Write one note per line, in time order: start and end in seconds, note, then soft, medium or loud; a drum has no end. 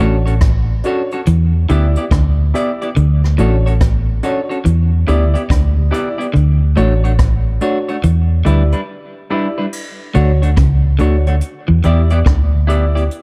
0.00 0.81 A1 medium
0.00 0.26 A2 medium
0.00 0.16 C#4 medium
0.00 0.27 D4 medium
0.00 0.16 F#4 medium
0.00 0.27 F#4 medium
0.00 0.16 A4 medium
0.00 0.27 C#5 medium
0.00 0.16 C#5 medium
0.26 0.34 C#4 medium
0.26 0.34 F#4 medium
0.26 0.34 A4 medium
0.26 0.33 C#5 medium
0.26 closed hi-hat soft
0.41 kick loud
0.41 cross-stick loud
0.41 closed hi-hat medium
0.83 1.01 C#4 medium
0.83 1.12 D4 medium
0.83 1.10 F#4 medium
0.83 1.01 F#4 medium
0.83 1.01 A4 medium
0.83 1.10 C#5 loud
0.83 1.02 C#5 medium
0.83 closed hi-hat medium
1.11 1.20 C#4 medium
1.11 1.18 F#4 soft
1.11 1.20 F#4 medium
1.11 1.19 A4 medium
1.11 1.17 C#5 soft
1.11 1.19 C#5 medium
1.11 closed hi-hat soft
1.26 1.67 E2 loud
1.26 1.52 E3 medium
1.26 closed hi-hat medium
1.69 1.95 D2 medium
1.69 1.86 D3 medium
1.69 1.86 B3 medium
1.69 1.96 E4 medium
1.69 1.86 E4 medium
1.69 1.97 G4 medium
1.69 1.86 G4 medium
1.69 1.97 D5 medium
1.69 1.86 D5 medium
1.69 closed hi-hat medium
1.95 2.04 B3 medium
1.95 2.04 E4 medium
1.95 2.04 G4 medium
1.95 2.04 D5 medium
1.95 closed hi-hat medium
2.11 2.52 D2 medium
2.11 2.37 D3 medium
2.11 kick loud
2.11 cross-stick loud
2.11 closed hi-hat medium
2.54 2.70 B3 medium
2.54 2.81 E4 medium
2.54 2.71 E4 medium
2.54 2.81 G4 medium
2.54 2.71 G4 medium
2.54 2.82 D5 medium
2.54 2.71 D5 medium
2.54 closed hi-hat medium
2.82 2.89 B3 medium
2.82 2.89 E4 medium
2.82 2.89 G4 medium
2.82 2.88 D5 medium
2.82 closed hi-hat soft
2.96 3.37 D2 loud
2.96 3.22 D3 medium
2.96 closed hi-hat medium
3.24 cross-stick medium
3.38 4.20 A1 loud
3.38 3.64 A2 medium
3.38 3.55 C#4 medium
3.38 3.66 D4 medium
3.38 3.66 F#4 medium
3.38 3.55 F#4 medium
3.38 3.55 A4 medium
3.38 3.66 C#5 loud
3.38 3.56 C#5 medium
3.38 closed hi-hat medium
3.66 3.74 C#4 medium
3.66 3.73 F#4 soft
3.66 3.73 A4 medium
3.66 3.73 C#5 medium
3.66 closed hi-hat soft
3.81 kick loud
3.81 cross-stick loud
3.81 closed hi-hat medium
4.23 4.39 C#4 medium
4.23 4.51 D4 medium
4.23 4.39 F#4 medium
4.23 4.51 F#4 medium
4.23 4.40 A4 medium
4.23 4.51 C#5 medium
4.23 4.40 C#5 medium
4.23 closed hi-hat medium
4.49 4.58 C#4 soft
4.49 4.57 F#4 soft
4.49 4.58 A4 medium
4.49 4.57 C#5 medium
4.49 closed hi-hat soft
4.65 5.06 E2 loud
4.65 4.91 E3 medium
4.65 closed hi-hat loud
5.07 5.34 D2 medium
5.07 5.24 D3 medium
5.07 5.24 B3 medium
5.07 5.24 E4 medium
5.07 5.35 E4 medium
5.07 5.24 G4 medium
5.07 5.35 G4 medium
5.07 5.24 D5 medium
5.07 5.36 D5 loud
5.07 closed hi-hat medium
5.34 5.42 B3 medium
5.34 5.42 E4 medium
5.34 5.42 G4 medium
5.34 5.41 D5 medium
5.34 closed hi-hat medium
5.50 5.90 D2 medium
5.50 5.75 D3 medium
5.50 kick medium
5.50 cross-stick loud
5.50 closed hi-hat medium
5.78 5.83 G4 soft
5.78 5.83 D5 soft
5.91 6.08 B3 medium
5.91 6.08 E4 medium
5.91 6.20 E4 medium
5.91 6.08 G4 medium
5.91 6.20 G4 medium
5.91 6.08 D5 medium
5.91 6.20 D5 loud
5.91 closed hi-hat medium
6.18 6.26 B3 medium
6.18 6.26 E4 medium
6.18 6.26 G4 medium
6.18 6.26 D5 medium
6.18 closed hi-hat medium
6.34 6.75 D2 loud
6.34 6.59 D3 medium
6.34 closed hi-hat medium
6.76 7.58 A1 loud
6.76 7.02 A2 medium
6.76 6.93 A3 medium
6.76 7.04 D4 medium
6.76 6.93 D4 medium
6.76 6.93 F#4 medium
6.76 7.05 F#4 medium
6.76 6.93 C#5 loud
6.76 7.05 C#5 loud
6.76 closed hi-hat medium
7.04 7.11 A3 soft
7.04 7.12 D4 medium
7.04 7.11 F#4 medium
7.04 7.11 C#5 medium
7.04 closed hi-hat medium
7.19 kick loud
7.19 cross-stick loud
7.19 closed hi-hat loud
7.61 7.77 A3 medium
7.61 7.78 D4 medium
7.61 7.89 D4 medium
7.61 7.88 F#4 medium
7.61 7.78 F#4 medium
7.61 7.78 C#5 medium
7.61 7.87 C#5 medium
7.61 closed hi-hat medium
7.89 7.96 A3 soft
7.89 7.96 D4 soft
7.89 7.96 F#4 medium
7.89 7.95 F#4 soft
7.89 7.96 C#5 medium
7.89 7.95 C#5 soft
7.89 closed hi-hat soft
8.03 8.44 E2 medium
8.03 8.29 E3 medium
8.03 closed hi-hat medium
8.45 8.72 D2 medium
8.45 8.62 D3 medium
8.45 8.62 G3 medium
8.45 8.62 D4 medium
8.45 8.73 E4 medium
8.45 8.62 E4 medium
8.45 8.74 G4 medium
8.45 8.63 B4 medium
8.45 8.74 D5 medium
8.45 closed hi-hat medium
8.72 8.81 G3 soft
8.72 8.80 D4 soft
8.72 8.80 E4 medium
8.72 8.80 B4 medium
8.72 closed hi-hat medium
9.30 9.47 G3 medium
9.30 9.47 D4 medium
9.30 9.58 E4 medium
9.30 9.47 E4 medium
9.30 9.58 G4 medium
9.30 9.47 B4 medium
9.30 9.58 D5 medium
9.58 9.66 G3 medium
9.58 9.65 D4 medium
9.58 9.65 E4 medium
9.58 9.65 B4 medium
9.73 crash medium
10.14 10.56 D2 loud
10.14 10.40 D3 medium
10.14 10.31 A3 medium
10.14 10.31 D4 medium
10.14 10.42 D4 medium
10.14 10.31 F#4 medium
10.14 10.43 F#4 medium
10.14 10.31 C#5 medium
10.14 10.43 C#5 medium
10.14 closed hi-hat medium
10.42 10.50 A3 medium
10.42 10.49 D4 medium
10.42 10.50 F#4 medium
10.42 10.49 C#5 medium
10.42 closed hi-hat medium
10.57 10.98 C#2 medium
10.57 10.83 C#3 medium
10.57 kick loud
10.57 cross-stick loud
10.57 closed hi-hat loud
10.99 11.40 D2 medium
10.99 11.24 D3 medium
10.99 11.16 A3 medium
10.99 11.27 D4 medium
10.99 11.16 D4 medium
10.99 11.27 F#4 medium
10.99 11.16 F#4 medium
10.99 11.28 C#5 medium
10.99 11.17 C#5 medium
10.99 closed hi-hat medium
11.27 11.35 A3 soft
11.27 11.34 D4 soft
11.27 11.34 F#4 medium
11.27 11.34 C#5 medium
11.27 closed hi-hat soft
11.41 closed hi-hat loud
11.68 11.84 E2 medium
11.68 11.78 E3 medium
11.83 12.25 E2 medium
11.83 12.09 E3 medium
11.83 12.01 B3 medium
11.83 12.12 E4 medium
11.83 12.01 E4 medium
11.83 12.12 G4 medium
11.83 12.01 G4 medium
11.83 12.01 D5 medium
11.83 12.12 D5 loud
11.83 closed hi-hat medium
12.10 12.19 B3 medium
12.10 12.19 E4 medium
12.10 12.18 G4 medium
12.10 12.18 D5 medium
12.10 closed hi-hat medium
12.26 13.07 D2 medium
12.26 12.52 D3 medium
12.26 kick loud
12.26 cross-stick loud
12.26 closed hi-hat medium
12.67 12.84 B3 medium
12.67 12.84 E4 medium
12.67 12.96 E4 medium
12.67 12.85 G4 medium
12.67 12.95 G4 medium
12.67 12.85 D5 medium
12.67 12.95 D5 medium
12.67 closed hi-hat medium
12.95 13.03 B3 soft
12.95 13.03 E4 soft
12.95 13.03 G4 medium
12.95 13.02 G4 soft
12.95 13.03 D5 medium
12.95 13.02 D5 soft
12.95 closed hi-hat medium
13.11 closed hi-hat medium